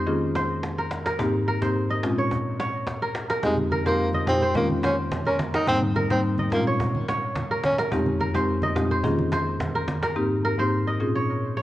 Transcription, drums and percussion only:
0.07 cajon slap
0.21 cajon slap
0.35 cajon slap
0.49 cajon slap
0.63 cajon slap
0.77 cajon slap
0.91 cajon slap
1.06 cajon slap
1.19 cajon bass
1.33 cajon slap
1.47 cajon slap
1.62 cajon bass, cajon slap
1.75 cajon slap
1.90 cajon slap
2.03 cajon slap
2.18 cajon slap
2.31 cajon bass
2.45 cajon slap
2.60 cajon slap
2.73 cajon slap
2.87 cajon bass, cajon slap
3.01 cajon slap
3.15 cajon slap
3.30 cajon slap
3.43 cajon bass, low conga
3.58 cajon slap, high conga
3.71 cajon slap, high conga
3.86 cajon bass, cajon slap
4.00 cajon slap
4.13 cajon slap, high conga
4.27 cajon slap, low conga
4.42 cajon slap
4.55 cajon bass, low conga
4.70 cajon slap, high conga
4.83 cajon bass, cajon slap
4.97 cajon slap
5.11 cajon slap, high conga, low conga
5.25 cajon slap
5.39 cajon slap, high conga
5.54 cajon slap
5.67 cajon bass, low conga
5.82 cajon slap, high conga
5.95 cajon slap, high conga
6.10 cajon bass, cajon slap
6.24 cajon slap
6.38 cajon slap, high conga
6.51 cajon slap, low conga
6.66 cajon slap
6.79 cajon bass, low conga
6.94 cajon slap, high conga
7.08 cajon slap
7.22 cajon slap
7.35 cajon bass, cajon slap, high conga, low conga
7.50 cajon slap
7.64 cajon slap, high conga
7.78 cajon slap
7.92 cajon bass, low conga
8.06 cajon slap, high conga
8.20 cajon slap, high conga
8.35 cajon bass, cajon slap
8.48 cajon slap
8.62 cajon slap, high conga
8.76 cajon slap, low conga
8.91 cajon slap
9.04 cajon bass, low conga
9.18 cajon slap, high conga
9.32 cajon bass, cajon slap
9.46 cajon slap
9.60 cajon slap, high conga, low conga
9.74 cajon slap
9.88 cajon slap, high conga
10.03 cajon slap

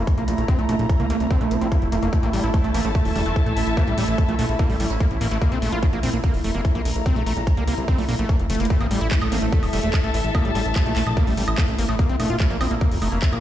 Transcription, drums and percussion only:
0.07 kick, closed hi-hat
0.18 closed hi-hat
0.28 closed hi-hat
0.38 closed hi-hat
0.48 kick, closed hi-hat
0.59 closed hi-hat
0.69 closed hi-hat
0.79 closed hi-hat
0.89 kick, closed hi-hat
1.00 closed hi-hat
1.10 closed hi-hat
1.20 closed hi-hat
1.31 kick, closed hi-hat
1.41 closed hi-hat
1.51 closed hi-hat
1.61 closed hi-hat
1.72 kick, closed hi-hat
1.82 closed hi-hat
1.92 closed hi-hat
2.03 closed hi-hat
2.13 kick, closed hi-hat
2.23 closed hi-hat
2.33 open hi-hat
2.44 closed hi-hat
2.54 kick, closed hi-hat
2.64 closed hi-hat
2.74 open hi-hat
2.85 closed hi-hat
2.95 kick, closed hi-hat
3.05 open hi-hat
3.16 open hi-hat
3.26 closed hi-hat
3.36 kick, closed hi-hat
3.46 closed hi-hat
3.57 open hi-hat
3.67 closed hi-hat
3.77 kick, closed hi-hat
3.87 closed hi-hat
3.98 open hi-hat
4.08 closed hi-hat
4.18 kick, closed hi-hat
4.29 closed hi-hat
4.39 open hi-hat
4.49 closed hi-hat
4.59 kick, closed hi-hat
4.70 open hi-hat
4.80 open hi-hat
4.90 closed hi-hat
5.00 kick, closed hi-hat
5.11 closed hi-hat
5.21 open hi-hat
5.31 closed hi-hat
5.42 kick, closed hi-hat
5.52 closed hi-hat
5.62 open hi-hat
5.72 closed hi-hat
5.83 kick, closed hi-hat
5.93 closed hi-hat
6.03 open hi-hat
6.13 closed hi-hat
6.24 kick, closed hi-hat
6.34 open hi-hat
6.44 open hi-hat
6.65 kick, closed hi-hat
6.75 closed hi-hat
6.85 open hi-hat
6.96 closed hi-hat
7.06 kick, closed hi-hat
7.16 closed hi-hat
7.26 open hi-hat
7.37 closed hi-hat
7.47 kick, closed hi-hat
7.57 closed hi-hat
7.68 open hi-hat
7.78 closed hi-hat
7.88 kick, closed hi-hat
7.98 open hi-hat
8.09 open hi-hat
8.19 closed hi-hat
8.29 kick, closed hi-hat
8.39 closed hi-hat
8.50 closed hi-hat, open hi-hat
8.55 closed hi-hat
8.60 closed hi-hat
8.65 closed hi-hat
8.70 kick, closed hi-hat
8.81 closed hi-hat, high woodblock
8.91 open hi-hat
9.01 closed hi-hat
9.11 kick, clap, closed hi-hat
9.22 closed hi-hat, high woodblock
9.32 open hi-hat
9.52 kick, closed hi-hat
9.63 open hi-hat, high woodblock
9.73 open hi-hat
9.83 closed hi-hat
9.94 kick, clap, closed hi-hat, high woodblock
10.04 closed hi-hat
10.14 open hi-hat
10.24 closed hi-hat
10.35 kick, closed hi-hat, high woodblock
10.45 closed hi-hat
10.55 open hi-hat
10.76 kick, clap, closed hi-hat, high woodblock
10.86 closed hi-hat
10.96 clap, open hi-hat
11.07 closed hi-hat, high woodblock
11.17 kick, closed hi-hat
11.27 open hi-hat
11.37 open hi-hat
11.48 high woodblock
11.58 kick, clap, closed hi-hat
11.68 closed hi-hat
11.79 open hi-hat
11.89 high woodblock
11.99 kick, closed hi-hat
12.09 closed hi-hat
12.20 open hi-hat, high woodblock
12.30 closed hi-hat
12.40 kick, clap, closed hi-hat
12.50 closed hi-hat
12.61 open hi-hat, high woodblock
12.71 closed hi-hat
12.81 kick, closed hi-hat
12.92 open hi-hat
13.02 open hi-hat, high woodblock
13.12 closed hi-hat
13.22 kick, clap, closed hi-hat
13.33 closed hi-hat, high woodblock

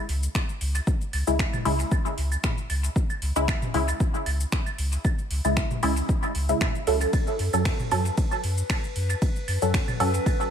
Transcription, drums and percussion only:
0.09 open hi-hat
0.23 shaker
0.35 finger snap, kick, claves, shaker
0.49 shaker
0.61 open hi-hat
0.75 claves, shaker
0.87 kick, shaker
1.01 shaker
1.13 open hi-hat, claves
1.27 shaker
1.39 finger snap, kick, shaker
1.53 mid tom, claves, shaker
1.65 open hi-hat
1.79 shaker
1.92 kick, claves, shaker
2.06 shaker
2.18 open hi-hat
2.32 claves, shaker
2.44 finger snap, kick, mid tom, shaker
2.58 shaker
2.70 open hi-hat, claves
2.84 shaker
2.96 kick, shaker
3.10 claves, shaker
3.22 open hi-hat
3.36 shaker
3.48 finger snap, kick, claves, shaker
3.62 mid tom, shaker
3.74 open hi-hat
3.88 claves, shaker
4.00 kick, shaker
4.14 shaker
4.26 open hi-hat, claves
4.40 shaker
4.52 finger snap, kick, shaker
4.66 claves, shaker
4.78 open hi-hat
4.92 shaker
5.05 kick, claves, shaker
5.19 shaker
5.31 open hi-hat
5.45 claves, shaker
5.57 finger snap, kick, shaker
5.71 mid tom, shaker
5.83 open hi-hat, claves
5.97 shaker
6.09 kick, shaker
6.23 claves, shaker
6.35 open hi-hat
6.49 shaker
6.61 finger snap, kick, mid tom, claves, shaker
6.75 shaker
6.87 open hi-hat
7.01 claves, shaker
7.13 kick, ride, claves, shaker
7.27 shaker
7.39 open hi-hat
7.53 claves, shaker
7.65 finger snap, kick, ride, shaker
7.79 mid tom, shaker
7.91 open hi-hat, claves
8.05 shaker
8.17 kick, ride, shaker
8.32 claves, shaker
8.44 open hi-hat
8.58 shaker
8.70 finger snap, kick, ride, claves, shaker
8.84 shaker
8.96 open hi-hat
9.10 claves, shaker
9.22 kick, ride, shaker
9.36 shaker
9.48 open hi-hat, claves
9.62 shaker
9.74 finger snap, kick, ride, shaker
9.88 mid tom, claves, shaker
10.00 open hi-hat
10.14 shaker
10.26 kick, ride, claves, shaker
10.40 shaker

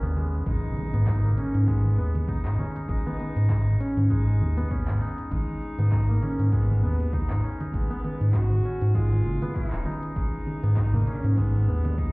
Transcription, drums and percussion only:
0.03 cajon slap, low conga, cabasa
0.16 low conga
0.33 cajon slap, cabasa
0.46 kick, closed hi-hat, cabasa
0.64 cabasa
0.77 closed hi-hat, low conga
0.94 closed hi-hat, cabasa
1.07 kick, clap, closed hi-hat, cabasa
1.24 low conga, cabasa
1.38 closed hi-hat
1.54 closed hi-hat, cabasa
1.68 kick, closed hi-hat, low conga, cabasa
1.86 cabasa
2.15 closed hi-hat, low conga, cabasa
2.28 kick, closed hi-hat, cabasa
2.45 clap
2.59 low conga
2.76 closed hi-hat, cabasa
2.89 kick, closed hi-hat, cabasa
3.06 low conga, cabasa
3.20 closed hi-hat
3.37 closed hi-hat, cabasa
3.50 kick, clap, closed hi-hat, low conga, cabasa
3.68 cabasa
3.81 closed hi-hat
3.97 closed hi-hat, low conga, cabasa
4.10 kick, closed hi-hat, cabasa
4.28 cabasa
4.41 low conga
4.58 closed hi-hat, cabasa
4.71 kick, closed hi-hat, cabasa
4.88 clap, low conga, cabasa
5.18 closed hi-hat, cabasa
5.31 kick, closed hi-hat, low conga, cabasa
5.49 cabasa
5.62 closed hi-hat
5.79 closed hi-hat, low conga, cabasa
5.92 kick, clap, closed hi-hat, cabasa
6.10 cabasa
6.23 closed hi-hat, low conga
6.39 closed hi-hat, cabasa
6.53 kick, closed hi-hat, cabasa
6.69 low conga, cabasa
7.00 closed hi-hat, cabasa
7.13 kick, closed hi-hat, low conga, cabasa
7.30 clap, cabasa
7.61 closed hi-hat, low conga, cabasa
7.74 kick, closed hi-hat, cabasa
7.92 cabasa
8.04 closed hi-hat, low conga
8.21 closed hi-hat, cabasa
8.34 kick, clap, closed hi-hat, cabasa
8.51 low conga, cabasa
8.65 closed hi-hat
8.82 closed hi-hat, cabasa
8.95 kick, closed hi-hat, low conga, cabasa
9.13 cabasa
9.42 closed hi-hat, low conga, cabasa
9.55 kick, closed hi-hat, cabasa
9.72 clap
9.86 closed hi-hat, low conga
10.03 closed hi-hat, cabasa
10.16 kick, cajon slap, closed hi-hat, cabasa
10.34 cabasa
10.47 closed hi-hat, low conga
10.63 closed hi-hat, cabasa
10.77 kick, clap, closed hi-hat, cabasa
10.94 cajon bass, low conga, cabasa
11.07 closed hi-hat
11.24 closed hi-hat, cabasa
11.37 kick, closed hi-hat, low conga, cabasa
11.55 cabasa
11.85 cajon slap, closed hi-hat, low conga, cabasa
11.98 kick, closed hi-hat, cabasa

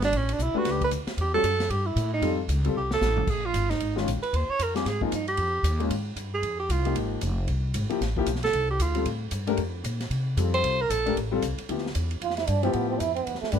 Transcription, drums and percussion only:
0.02 snare, ride
0.13 ride
0.29 ride
0.39 hi-hat pedal
0.65 snare, ride
0.81 kick, ride
0.91 hi-hat pedal, ride
1.07 snare, ride
1.18 ride
1.44 hi-hat pedal, ride
1.60 snare, ride
1.70 ride
1.97 hi-hat pedal, ride
2.22 ride
2.49 hi-hat pedal, ride
2.64 ride
2.91 snare
3.01 snare, hi-hat pedal
3.17 floor tom
3.27 kick, crash
3.54 hi-hat pedal, ride
3.71 snare, ride
3.80 ride
3.97 snare
4.08 hi-hat pedal, ride
4.23 ride
4.34 ride
4.59 hi-hat pedal, ride
4.75 snare, ride
4.86 snare, ride
5.01 kick
5.12 hi-hat pedal, ride
5.28 ride
5.37 ride
5.64 hi-hat pedal, ride
5.80 ride
5.90 ride
6.16 hi-hat pedal, ride
6.43 ride
6.70 hi-hat pedal, ride
6.85 ride
6.96 ride
7.21 hi-hat pedal, ride
7.48 ride
7.74 hi-hat pedal, ride
7.90 ride
8.01 snare, ride
8.17 kick
8.26 hi-hat pedal, ride
8.35 snare
8.43 snare, ride
8.53 ride
8.80 hi-hat pedal, ride
8.95 ride
9.06 ride
9.31 hi-hat pedal, ride
9.47 ride
9.57 ride
9.84 hi-hat pedal, ride
10.00 snare, ride
10.11 ride
10.37 hi-hat pedal, ride
10.54 ride
10.64 ride
10.90 hi-hat pedal, ride
11.06 ride
11.17 ride
11.42 hi-hat pedal, ride
11.58 ride
11.69 ride
11.78 snare
11.86 snare
11.95 hi-hat pedal, ride
12.11 ride
12.22 ride
12.30 snare
12.37 snare, ride
12.47 hi-hat pedal, ride
12.63 ride
12.73 ride
13.00 hi-hat pedal, ride
13.16 ride
13.27 ride
13.35 snare
13.44 snare
13.52 hi-hat pedal, ride

